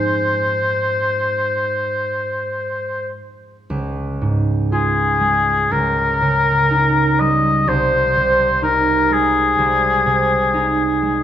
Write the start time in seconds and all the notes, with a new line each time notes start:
Already playing: G#2 G#3 D#4 G#4 C5
3.70 C#2
4.21 G#2
4.72 F4 G#4
5.21 G#3
5.71 C#2 A#4
6.22 C#3
6.71 D#4
7.20 G3 D#5
7.67 C2 C5
8.16 C3
8.62 D#4 A#4
9.10 G#3 G#4
9.59 C2
10.06 C3
10.54 D#4
11.02 G#3